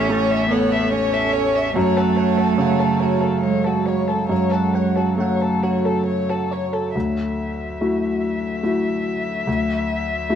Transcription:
Already playing: grand piano A1 E2, cello C#4
0.09 grand piano A3, violin C#5, synth pluck A5
0.31 violin E5
0.50 cello B3, synth pluck A4, violin C#5
0.72 synth pluck C#5, violin E5
0.91 cello C#4, violin C#5
1.13 synth pluck A4, violin E5
1.33 violin C#5, synth pluck E5
1.55 synth pluck C#5, violin E5
1.75 grand piano F#2, cello A3, synth pluck F#4, violin C#5
1.96 violin A4, synth pluck F#5
2.16 violin C#5, synth pluck F#5
2.38 synth pluck F#4, violin A4
2.58 grand piano C#3, violin C#5, synth pluck F#5
2.79 violin A4
3.00 synth pluck F#4, violin C#5
3.21 violin A4, synth pluck A4
3.43 cello G#3, violin C#5
3.64 synth pluck F#4, violin A4
3.86 violin C#5, synth pluck C#5
4.08 violin A4, synth pluck A4
4.29 grand piano F#2, cello G#3, synth pluck F#4, violin C#5
4.51 violin A4, synth pluck F#5
4.74 violin C#5, synth pluck F#5
4.96 synth pluck F#4, violin A4
5.17 cello F#3, grand piano A3, violin C#5, synth pluck F#5
5.41 violin A4
5.63 synth pluck F#4, violin C#5
5.85 violin A4, synth pluck A4
6.06 violin C#5
6.29 synth pluck F#4, violin A4
6.51 synth pluck C#5, violin C#5
6.73 violin A4, synth pluck A4
6.93 grand piano D2, cello F#3, violin E5
7.81 grand piano A3 E4 F#4
8.63 grand piano A3 E4 F#4
9.47 grand piano D2
10.29 grand piano A3 E4 F#4

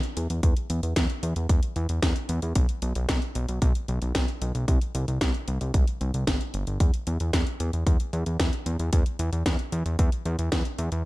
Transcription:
0.03 closed hi-hat
0.17 analog synth bass E2, closed hi-hat
0.30 analog synth bass E2, closed hi-hat
0.43 analog synth bass E2, kick, closed hi-hat
0.57 closed hi-hat
0.70 analog synth bass E2, closed hi-hat
0.83 analog synth bass E2, closed hi-hat
0.96 analog synth bass E2, kick, snare, closed hi-hat
1.10 closed hi-hat
1.23 analog synth bass E2, closed hi-hat
1.36 analog synth bass E2, closed hi-hat
1.49 analog synth bass E2, kick, closed hi-hat
1.63 closed hi-hat
1.76 analog synth bass E2, closed hi-hat
1.89 analog synth bass E2, closed hi-hat
2.02 analog synth bass E2, kick, snare, closed hi-hat
2.16 closed hi-hat
2.29 analog synth bass E2, closed hi-hat
2.42 analog synth bass E2, closed hi-hat
2.55 analog synth bass B1, kick, closed hi-hat
2.69 closed hi-hat
2.82 analog synth bass B1, closed hi-hat
2.95 analog synth bass B1, closed hi-hat
3.09 analog synth bass B1, kick, snare, closed hi-hat
3.22 closed hi-hat
3.35 analog synth bass B1, closed hi-hat
3.49 analog synth bass B1, closed hi-hat
3.62 analog synth bass B1, kick, closed hi-hat
3.75 closed hi-hat
3.88 analog synth bass B1, closed hi-hat
4.02 analog synth bass B1, closed hi-hat
4.15 analog synth bass B1, kick, snare, closed hi-hat
4.28 closed hi-hat
4.41 analog synth bass B1, closed hi-hat
4.55 analog synth bass B1, closed hi-hat
4.68 analog synth bass C2, kick, closed hi-hat
4.82 closed hi-hat
4.95 analog synth bass C2, closed hi-hat
5.08 analog synth bass C2, closed hi-hat
5.21 analog synth bass C2, kick, snare, closed hi-hat
5.34 closed hi-hat
5.48 analog synth bass C2, closed hi-hat
5.61 analog synth bass C2, closed hi-hat
5.74 analog synth bass C2, kick, closed hi-hat
5.88 closed hi-hat
6.01 analog synth bass C2, closed hi-hat
6.14 analog synth bass C2, closed hi-hat
6.27 analog synth bass G1, kick, snare, closed hi-hat
6.41 closed hi-hat
6.54 analog synth bass G1, closed hi-hat
6.67 analog synth bass G1, closed hi-hat
6.80 analog synth bass E2, kick, closed hi-hat
6.94 closed hi-hat
7.07 analog synth bass E2, closed hi-hat
7.20 analog synth bass E2, closed hi-hat
7.33 analog synth bass E2, kick, snare, closed hi-hat
7.47 closed hi-hat
7.60 analog synth bass E2, closed hi-hat
7.73 analog synth bass E2, closed hi-hat
7.87 analog synth bass E2, kick, closed hi-hat
8.00 closed hi-hat
8.13 analog synth bass E2, closed hi-hat
8.26 analog synth bass E2, closed hi-hat
8.40 analog synth bass E2, kick, snare, closed hi-hat
8.53 closed hi-hat
8.66 analog synth bass E2, closed hi-hat
8.79 analog synth bass E2, closed hi-hat
8.93 analog synth bass E2, kick, closed hi-hat
9.06 closed hi-hat
9.19 analog synth bass E2, closed hi-hat
9.32 analog synth bass E2, closed hi-hat
9.46 analog synth bass E2, kick, snare, closed hi-hat
9.59 closed hi-hat
9.72 analog synth bass E2, closed hi-hat
9.86 analog synth bass E2, closed hi-hat
9.99 analog synth bass E2, kick, closed hi-hat
10.12 closed hi-hat
10.25 analog synth bass E2, closed hi-hat
10.39 analog synth bass E2, closed hi-hat
10.52 analog synth bass E2, kick, snare, closed hi-hat
10.65 closed hi-hat
10.79 analog synth bass E2, closed hi-hat
10.92 analog synth bass E2, closed hi-hat

